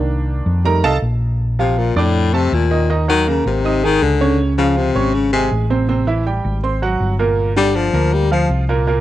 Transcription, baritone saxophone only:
1.60 C3
1.78 A#2
1.97 A2
2.34 C3
2.54 A#2
3.09 D#3
3.29 C#3
3.47 C3
3.84 D#3
4.02 D3
4.58 C#3
4.77 C3
5.14 C#3
5.33 C3
7.57 G3
7.76 F3
8.13 G3
8.32 F3

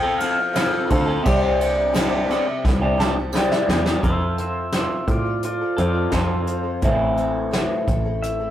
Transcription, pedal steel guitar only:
Already playing: G5
0.18 F5
0.90 C5
4.04 C5 E5
4.40 C5 E5
4.75 C5 E5
5.10 F4 D5
5.45 F4 D5
5.80 F4 D5
6.15 C5
8.22 E5

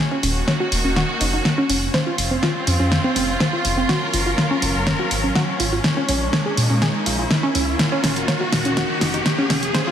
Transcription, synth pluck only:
0.11 C#4
0.23 C#4
0.48 C#5
0.60 F#4
0.85 C#4
0.96 F#4
1.21 D#4
1.33 D#4
1.58 C#4
1.70 C#4
1.94 C5
2.07 F4
2.31 C4
2.43 F4
2.67 C#4
2.80 C#4
3.04 C4
3.16 C4
3.40 C5
3.53 F4
3.77 C4
3.89 F#4
4.14 F4
4.26 F4
4.51 C#4
4.62 C#4
4.87 C#5
4.99 F#4
5.24 C#4
5.36 F#4
5.60 F4
5.72 F4
5.97 C#4
6.09 C#4
6.33 C#5
6.46 G#4
6.70 C#4
6.82 G#4
7.06 F4
7.19 F4
7.43 C#4
7.55 C#4
7.92 C#4
8.04 C#4
8.28 C#5
8.41 F#4
8.65 C#4
8.77 F#4
9.01 D#4
9.14 D#4
9.38 C#4
9.50 C#4
9.74 C5
9.87 F4

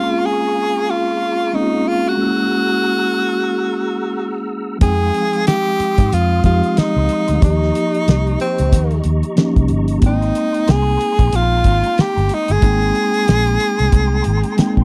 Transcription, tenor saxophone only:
Already playing: F4
0.26 G#4
0.90 F4
1.55 D#4
1.88 F4
2.08 F#4
4.82 G#4
5.47 G4
6.14 F4
6.45 F4
6.78 D#4
7.44 D#4
8.41 C4
10.06 D#4
10.71 G#4
11.36 F4
12.01 G4
12.34 D#4
12.52 G#4

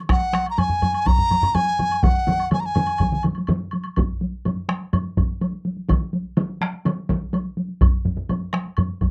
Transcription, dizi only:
0.11 F#5
0.50 A#5
0.59 G#5
1.07 A#5
1.55 G#5
2.03 F#5
2.53 G#5
2.60 A#5
2.66 G#5

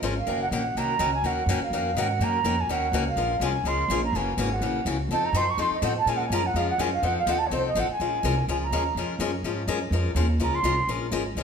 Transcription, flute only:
0.18 F5
0.42 F#5
0.53 F#5
0.77 A#5
1.14 G#5
1.26 F#5
1.62 F5
1.99 F#5
2.23 A#5
2.60 G#5
2.71 F#5
3.08 F5
3.43 G#5
3.67 C6
4.04 A#5
4.15 G#5
4.53 F#5
5.11 A5
5.24 A#5
5.36 C6
5.49 C#6
5.60 C6
5.73 D#5
5.84 F#5
5.97 A5
6.08 G#5
6.16 F#5
6.25 G#5
6.33 A#5
6.46 F#5
6.56 F5
6.69 F#5
6.80 G#5
6.93 F5
7.04 F#5
7.18 F5
7.30 F#5
7.38 A5
7.46 C#5
7.53 C5
7.67 D#5
7.79 F#5
7.91 G#5
8.50 G#5
8.62 A#5
10.42 A#5
10.54 C6

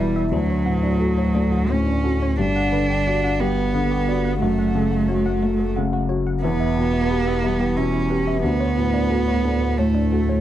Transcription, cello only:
Already playing: G3
0.34 F#3
1.71 C#4
2.40 D4
3.40 B3
4.41 A3
6.43 B3
7.77 C#4
8.43 B3
9.78 A3

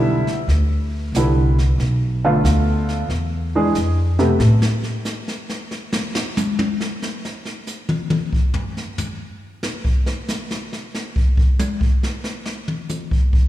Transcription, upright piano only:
Already playing: D3 G3 B3 E4 E5
1.16 D3 G3 B3 E4
2.25 D3 A3 B3 F4
3.55 E3 G#3 D4 G#4
4.19 C3 A3 B3 G4

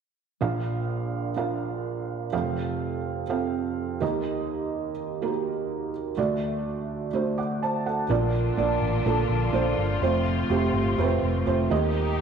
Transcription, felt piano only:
0.41 A#1 A#2 D4 F4 A#4 F5
1.37 D4 F4 A#4 F5
2.32 F1 F2 C4 F4 A4 F5
3.29 C4 F4 A4 F5
4.00 D#2 D#3 A#3 D#4 G4 D#5
5.22 A#3 D#4 F#4 A#4
5.28 G4
6.17 D2 D3 A3 D4 F#4 D5
7.13 A3 D4 F#4 C5
7.38 F#5 D6
7.63 C5 A5
7.86 A4 F#5
8.09 A#2 A#3 D4 F4 D5
8.57 A#3 D4 F4 D5
9.06 A#3 D4 F4 A4
9.53 A#3 D4 F4 C5
10.02 A3 C4 F4 C5
10.50 A3 C4 F4 G4
10.98 A3 C4 F4 B4
11.05 C5
11.46 A3 C4 F4 C5
11.70 D#3 A#3 D#4 G4 D#5

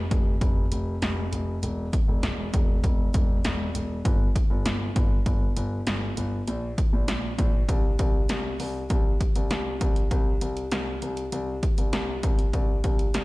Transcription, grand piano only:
0.11 F1
0.41 F1
0.72 F1
1.02 F1
1.32 F1
1.63 E1
2.08 E1
2.23 E1
2.54 E1
2.84 E1
3.14 E1
3.45 E1
3.75 E1
4.05 G1
4.50 G1
4.65 G1
4.96 G1
5.26 G1
5.56 G1
5.87 G1
6.17 G1
6.48 A#1
6.93 A#1
7.08 A#1
7.38 A#1
7.69 C2
7.99 C2
8.29 C2
8.60 C2
8.90 C2
9.36 C2
9.51 C2
9.81 C2
10.11 C2
10.41 C2
10.72 C2
11.02 C2
11.32 C2
11.78 C2
11.93 C2
12.23 C2
12.53 C2
12.84 C2
13.14 C2

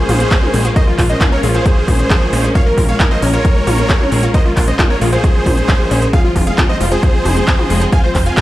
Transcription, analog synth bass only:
0.09 A#1
0.54 A#1
0.98 A#1
1.43 A#1
1.88 A#1
2.33 A#1
2.78 A#1
3.22 A#1
3.67 A#1
4.12 A#1
4.57 A#1
5.01 A#1
5.46 A#1
5.91 A#1
6.36 F1
6.80 F1
7.25 F1
7.70 F1
8.15 F1

